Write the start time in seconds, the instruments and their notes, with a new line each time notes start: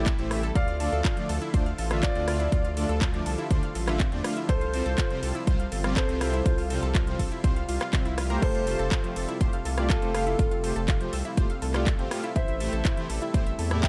Already playing: sub bass A1, analog synth pad C3 G3 A3 E4
0.06 synth pluck E4 E5, kick, clap, closed hi-hat
0.19 sub bass A1, supersaw synth A2 A3 E4 G4 C5, synth pluck E4 E5, closed hi-hat
0.31 supersaw synth D3 A3 E4 G4 E5, synth pluck E3 E4, cross-stick, open hi-hat
0.43 synth pluck A4 A5, closed hi-hat
0.55 sub bass D2, analog synth pad D3 F3 F4, synth pluck F4 F5, grand piano D5 F5, digital synth lead F5, kick, closed hi-hat
0.68 synth pluck F4 F5, closed hi-hat
0.80 supersaw synth D3 A3 D4 F4 D5, synth pluck A4 A5, open hi-hat, ride
0.92 sub bass D2, synth pluck A4 A5, closed hi-hat
1.05 synth pluck F4 F5, kick, clap, closed hi-hat
1.17 supersaw synth D3 A3 D4 F4 D5, synth pluck F3 F4, closed hi-hat
1.29 sub bass D2, synth pluck A4 A5, open hi-hat, ride
1.42 synth pluck E4 E5, closed hi-hat
1.54 sub bass D2, supersaw synth D3 A3 D4 F4 D5, synth pluck C5 C6, kick, closed hi-hat
1.66 synth pluck F5 F6, closed hi-hat
1.78 sub bass A1, synth pluck A4 A5, open hi-hat, ride
1.91 supersaw synth D3 A3 D4 F4 E5, synth pluck F4 F5, cross-stick, closed hi-hat
2.03 synth pluck C4 C5, grand piano F4 D5, digital synth lead D5, kick, clap, closed hi-hat
2.15 sub bass D2, supersaw synth D3 A3 D4 F4 D5, synth pluck C4 C5, closed hi-hat
2.28 supersaw synth D3 A3 D4 F4 F5, synth pluck F4 F5, cross-stick, open hi-hat, ride
2.40 synth pluck E4 E5, closed hi-hat
2.52 sub bass D2, analog synth pad G3, synth pluck F4 F5, kick, closed hi-hat
2.65 synth pluck F4 F5, closed hi-hat
2.77 supersaw synth D3 A3 D4 F4 D5, synth pluck A4 A5, open hi-hat, ride
2.89 sub bass D2, synth pluck A4 A5, closed hi-hat
3.01 synth pluck F4 F5, kick, clap, closed hi-hat
3.14 supersaw synth D3 A3 D4 F4 D5, synth pluck F3 F4, closed hi-hat
3.26 sub bass C2, synth pluck A4 A5, open hi-hat, ride
3.38 synth pluck E4 E5, closed hi-hat
3.51 sub bass D2, supersaw synth D3 A3 D4 F4 D5, synth pluck C5 C6, kick, closed hi-hat
3.63 synth pluck F5 F6, closed hi-hat
3.75 sub bass A1, synth pluck A4 A5, open hi-hat, ride
3.87 supersaw synth D3 A3 D4 F4 E5, synth pluck F4 F5, cross-stick, clap, closed hi-hat
4.00 synth pluck C4 C5, kick, clap, closed hi-hat
4.12 sub bass E2, supersaw synth D3 A3 D4 F4 D5, synth pluck C4 C5, closed hi-hat
4.24 supersaw synth A3 D4 F4 F5, synth pluck F4 F5, cross-stick, open hi-hat, ride
4.37 synth pluck E4 E5, closed hi-hat
4.49 sub bass C2, analog synth pad C3, synth pluck F4 F5, grand piano A4 C5, digital synth lead C5, kick, closed hi-hat
4.61 synth pluck F4 F5, closed hi-hat
4.74 supersaw synth C3 G3 C4 F4 C5, synth pluck A4 A5, open hi-hat, ride
4.86 sub bass C2, synth pluck A4 A5, closed hi-hat
4.98 synth pluck F4 F5, kick, clap, closed hi-hat
5.10 supersaw synth C3 G3 C4 F4 C5, synth pluck F3 F4, closed hi-hat
5.23 sub bass C2, synth pluck A4 A5, open hi-hat, ride
5.35 synth pluck E4 E5, closed hi-hat
5.47 sub bass C2, supersaw synth C3 G3 C4 F4 C5, synth pluck C5 C6, kick, closed hi-hat
5.60 synth pluck F5 F6, closed hi-hat
5.72 sub bass G1, synth pluck A4 A5, open hi-hat, ride
5.84 supersaw synth C3 G3 C4 F4 D5, synth pluck F4 F5, cross-stick, closed hi-hat
5.96 synth pluck C4 C5, grand piano A4 C5, digital synth lead C5, kick, clap, closed hi-hat
6.09 sub bass C2, supersaw synth C3 G3 C4 F4 C5, synth pluck C4 C5, closed hi-hat
6.21 supersaw synth C3 G3 C4 F4 E5, synth pluck F4 F5, cross-stick, open hi-hat, ride
6.33 synth pluck E4 E5, closed hi-hat
6.46 sub bass C2, synth pluck F4 F5, kick, closed hi-hat
6.58 synth pluck F4 F5, open hi-hat
6.70 supersaw synth C3 G3 C4 F4 C5, synth pluck A4 A5, open hi-hat, ride
6.83 sub bass C2, synth pluck A4 A5, closed hi-hat
6.95 synth pluck F4 F5, kick, clap, closed hi-hat
7.07 supersaw synth C3 G3 C4 F4 C5, synth pluck F3 F4, closed hi-hat
7.19 sub bass A#1, synth pluck A4 A5, kick, open hi-hat, ride
7.32 synth pluck E4 E5, closed hi-hat
7.44 sub bass C2, supersaw synth C3 G3 C4 F4 C5, synth pluck C5 C6, kick, closed hi-hat
7.56 synth pluck F5 F6, closed hi-hat
7.69 sub bass C2, synth pluck F4 F5, open hi-hat, ride
7.81 synth pluck F4 F5, cross-stick, clap, closed hi-hat
7.93 supersaw synth C3 G3 C4 F4 C5, synth pluck F5 F6, kick, clap, closed hi-hat
8.05 sub bass C2, synth pluck E4 E5, closed hi-hat
8.18 synth pluck F4 F5, cross-stick, open hi-hat, ride
8.30 supersaw synth A3 F4 G4 C5, synth pluck A#4 A#5, closed hi-hat
8.42 sub bass F1, analog synth pad A3, synth pluck F4 F5, grand piano A4 C5, digital synth lead C5, kick, closed hi-hat, crash
8.55 synth pluck F4 F5, closed hi-hat
8.67 supersaw synth A3 F4 G4 C5, synth pluck A4 A5, open hi-hat, ride
8.79 sub bass F1, synth pluck A4 A5, closed hi-hat
8.92 synth pluck F4 F5, kick, clap, closed hi-hat
9.04 synth pluck F3 F4, supersaw synth A3 F4 G4 C5, closed hi-hat
9.16 sub bass F1, synth pluck A4 A5, open hi-hat, ride
9.28 synth pluck E4 E5, closed hi-hat
9.41 sub bass F1, supersaw synth A3 F4 G4 C5, synth pluck C5 C6, kick, closed hi-hat
9.53 synth pluck F5 F6, closed hi-hat
9.65 sub bass C2, synth pluck A4 A5, open hi-hat, ride
9.78 supersaw synth A3 F4 G4 D5, synth pluck F4 F5, cross-stick, closed hi-hat
9.90 grand piano F4 A4, digital synth lead A4, synth pluck A4 A5, kick, clap, closed hi-hat
10.02 sub bass F1, supersaw synth A3 F4 G4 C5, synth pluck C4 C5, closed hi-hat
10.14 supersaw synth A3 F4 G4 F5, synth pluck F4 F5, cross-stick, open hi-hat, ride
10.27 synth pluck E4 E5, closed hi-hat
10.39 sub bass F1, synth pluck F4 F5, kick, closed hi-hat
10.51 synth pluck F4 F5, closed hi-hat
10.64 supersaw synth A3 F4 G4 C5, synth pluck A4 A5, open hi-hat, ride
10.76 sub bass F1, synth pluck A4 A5, closed hi-hat
10.88 synth pluck F4 F5, kick, clap, closed hi-hat
11.01 synth pluck F3 F4, supersaw synth A3 F4 G4 C5, closed hi-hat
11.13 sub bass C2, synth pluck A4 A5, open hi-hat, ride
11.25 synth pluck E4 E5, closed hi-hat
11.37 sub bass F1, supersaw synth A3 F4 G4 C5, synth pluck C5 C6, kick, closed hi-hat
11.50 synth pluck F5 F6, closed hi-hat
11.62 sub bass C2, synth pluck A4 A5, open hi-hat, ride
11.74 supersaw synth A3 F4 G4 D5, synth pluck F4 F5, cross-stick, clap, closed hi-hat
11.87 synth pluck A4, kick, clap, closed hi-hat
11.99 sub bass G1, supersaw synth A3 F4 G4 C5, synth pluck C4 C5, closed hi-hat
12.11 supersaw synth A2 A3 F4 G4 F5, synth pluck F4 F5, cross-stick, open hi-hat, ride
12.24 synth pluck E4 E5, closed hi-hat
12.36 sub bass A1, analog synth pad G3 E4, synth pluck E4 E5, grand piano C5 E5, digital synth lead E5, kick, closed hi-hat
12.48 synth pluck E4 E5, closed hi-hat
12.60 supersaw synth A2 A3 E4 G4 C5, synth pluck A4 A5, open hi-hat, ride
12.73 sub bass A1, synth pluck A4 A5, closed hi-hat
12.85 synth pluck E4 E5, kick, clap, closed hi-hat
12.97 supersaw synth A2 A3 E4 G4 C5, synth pluck E3 E4, closed hi-hat
13.10 sub bass A1, synth pluck A4 A5, open hi-hat, ride
13.22 synth pluck E4 E5, closed hi-hat
13.34 sub bass A1, supersaw synth A2 A3 E4 G4 C5, synth pluck C5 C6, kick, closed hi-hat
13.46 synth pluck E5 E6, closed hi-hat
13.59 sub bass E2, synth pluck A4 A5, open hi-hat, ride
13.71 supersaw synth A2 A3 E4 G4 D5, synth pluck E4 E5, cross-stick, closed hi-hat
13.83 synth pluck A4 A5, grand piano E5 G5, digital synth lead G5, kick, clap, closed hi-hat